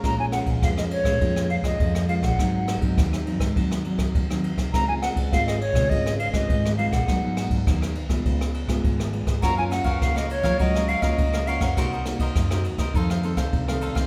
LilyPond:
<<
  \new Staff \with { instrumentName = "Flute" } { \time 4/4 \key bes \minor \tempo 4 = 102 bes''16 aes''16 ges''8 f''16 ees''16 des''4 f''16 ees''8. f''16 ges''16~ | ges''8. r2. r16 | bes''16 aes''16 ges''8 f''16 ees''16 des''8 ees''8 f''16 ees''8. f''16 ges''16~ | ges''8. r2. r16 |
bes''16 aes''16 ges''8 f''16 ees''16 des''8 ees''8 f''16 ees''8. f''16 ges''16~ | ges''8. r2. r16 | }
  \new Staff \with { instrumentName = "Cavaquinho" } { \time 4/4 \key bes \minor r1 | r1 | r1 | r1 |
<ges' bes' des'' f''>16 <bes' des'' f''>16 r16 <bes' des'' f''>8 <bes' des'' f''>16 r16 <bes' des'' f''>16 <ges' bes' des'' f''>16 <bes' des'' f''>16 <ges' bes' des'' f''>16 <bes' des'' f''>8 <bes' des'' f''>16 <ges' bes' des'' f''>16 <bes' des'' f''>16 | <ges' bes' c'' ees''>16 <bes' c'' ees''>16 r16 <bes' c'' ees''>8 <bes' c'' ees''>16 r16 <bes' c'' ees''>16 <ees' a' c'' f''>16 <a' c'' f''>16 <ees' a' c'' f''>16 <a' c'' f''>8 <a' c'' f''>16 <ees' a' c'' f''>16 <a' c'' f''>16 | }
  \new Staff \with { instrumentName = "Nylon-string guitar" } { \time 4/4 \key bes \minor << { <aes des' f'>16 <aes des' f'>8. <aes des' f'>8. <aes des' f'>16 <aes des' f'>8 r16 <aes des' f'>8. <aes des' f'>8 | <ges c' ees'>8. <ges c' ees'>8. <ges c' ees'>16 r16 <ges c' ees'>8 <ges c' ees'>8. <ges c' ees'>8. | <aes c' f'>16 <aes c' f'>8. <aes c' f'>8 r16 <aes c' f'>16 <aes c' f'>8 r16 <aes c' f'>8. <aes c' f'>8 | <ges ces' ees'>16 <ges ces' ees'>8. <ges ces' ees'>8 r16 <aes ces' f'>4 <aes ces' f'>8. <aes ces' f'>16 r16 |
<bes des' f'>16 <bes des' f'>8. <bes des' f'>8. <bes des' f'>16 <bes des' f'>8 r16 <bes des' f'>8. <bes des' f'>16 r16 | <bes ees' ges'>16 r16 <bes ees' ges'>8. <bes ees' ges'>8. <ees a c'>8 <ees a c'>8. <ees a c'>8. | } \\ { bes,4 f,4 bes,4 f,4 | aes,4 ees4 aes,4 ees4 | des4 aes,4 des4 aes,4 | aes,4 ees4 des4 aes,4 |
ges4 des4 ges4 des4 | c4 c4 f,4 c4 | } >> }
  \new Staff \with { instrumentName = "Upright bass" } { \clef bass \time 4/4 \key bes \minor bes,,8. bes,,16 f,8. bes,16 f,8. f,16 f,8. bes,,16 | aes,,8. aes,,16 ees,8. aes,16 ees,8. ees,16 ees,8. c,16 | des,8. des,16 aes,,8. des16 aes,,8. aes,,16 aes,,8. bes,,16 | aes,,8. aes,,16 ees,8. ces,16 des,8. aes,,16 aes,,8. aes,,16 |
ges,8. ges,16 des,8. ges16 des,8. des,16 des,8. ges,16 | c,8. c,16 ges,8. c,16 f,8. c,16 c,8. c,16 | }
  \new DrumStaff \with { instrumentName = "Drums" } \drummode { \time 4/4 <bd cymr ss>8 <cymr ss>16 <bd cymr>16 <bd cymr ss>16 ss16 cymr16 <bd cymr ss>16 <bd cymr>16 ss16 cymr16 <bd cymr ss>16 <bd cymr>16 ss16 cymr16 <bd cymr ss>16 | <bd cymr ss>8 <cymr ss>16 <bd cymr>16 <bd cymr ss>16 ss16 cymr16 <bd cymr ss>16 <bd cymr>16 ss16 cymr16 <bd cymr ss>16 <bd cymr>16 ss16 cymr16 <bd cymr ss>16 | <bd cymr ss>8 <cymr ss>16 <bd cymr>16 <bd cymr ss>16 ss16 cymr16 <bd cymr ss>16 <bd cymr>16 ss16 cymr16 <bd cymr ss>16 <bd cymr>16 ss16 cymr16 <bd cymr ss>16 | <bd cymr ss>8 <cymr ss>16 <bd cymr>16 <bd cymr ss>16 ss16 cymr16 <bd cymr ss>16 <bd cymr>16 ss16 cymr16 <bd cymr ss>16 <bd cymr>16 ss16 cymr16 <bd cymr ss>16 |
<bd cymr ss>8 <cymr ss>16 <bd cymr>16 <bd cymr ss>16 ss16 cymr16 <bd cymr ss>16 <bd cymr>16 ss16 cymr16 <bd cymr ss>16 <bd cymr>16 ss16 cymr16 <bd cymr ss>16 | <bd cymr ss>8 <cymr ss>16 <bd cymr>16 <bd cymr ss>16 ss16 cymr16 <bd cymr ss>16 <bd cymr>16 ss16 cymr16 <bd cymr ss>16 <bd cymr>16 ss16 cymr16 <bd cymr ss>16 | }
>>